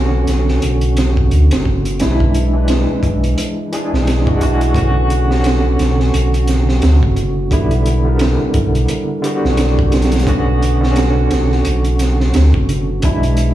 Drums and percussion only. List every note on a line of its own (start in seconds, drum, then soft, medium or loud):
0.27 snare soft
0.27 closed hi-hat medium
0.48 snare soft
0.62 closed hi-hat medium
0.81 closed hi-hat soft
0.97 snare medium
0.97 closed hi-hat medium
1.17 kick medium
1.31 closed hi-hat medium
1.51 snare loud
1.51 closed hi-hat medium
1.65 kick medium
1.85 closed hi-hat medium
2.00 snare medium
2.00 closed hi-hat medium
2.20 kick medium
2.34 closed hi-hat medium
2.68 snare medium
2.68 closed hi-hat medium
3.03 kick medium
3.03 closed hi-hat medium
3.24 closed hi-hat soft
3.38 closed hi-hat medium
3.73 closed hi-hat medium
3.94 snare soft
4.07 snare loud
4.07 closed hi-hat medium
4.27 kick medium
4.41 closed hi-hat medium
4.61 closed hi-hat soft
4.75 kick medium
4.75 closed hi-hat medium
5.10 closed hi-hat medium
5.31 snare soft
5.44 snare loud
5.44 closed hi-hat medium
5.79 snare soft
5.79 closed hi-hat medium
6.00 snare soft
6.14 closed hi-hat medium
6.34 closed hi-hat soft
6.47 snare soft
6.47 closed hi-hat medium
6.69 snare soft
6.82 snare loud
6.82 closed hi-hat medium
7.03 kick medium
7.16 closed hi-hat medium
7.51 kick loud
7.51 closed hi-hat medium
7.71 closed hi-hat soft
7.86 closed hi-hat medium
8.19 snare medium
8.19 closed hi-hat medium
8.54 kick medium
8.54 closed hi-hat medium
8.75 closed hi-hat soft
8.88 closed hi-hat medium
9.24 closed hi-hat medium
9.45 snare soft
9.57 snare loud
9.57 closed hi-hat medium
9.79 kick medium
9.92 snare medium
9.92 closed hi-hat medium
10.02 snare medium
10.02 closed hi-hat medium
10.12 snare medium
10.12 closed hi-hat medium
10.19 snare medium
10.19 closed hi-hat medium
10.27 kick loud
10.27 closed hi-hat medium
10.62 closed hi-hat medium
10.83 snare soft
10.96 snare loud
10.96 closed hi-hat medium
11.31 snare loud
11.31 closed hi-hat medium
11.52 snare soft
11.65 closed hi-hat medium
11.84 closed hi-hat soft
11.99 snare soft
11.99 closed hi-hat medium
12.20 snare soft
12.34 snare loud
12.34 closed hi-hat medium
12.54 kick loud
12.69 closed hi-hat medium
13.02 kick loud
13.02 closed hi-hat medium
13.23 closed hi-hat soft
13.37 closed hi-hat medium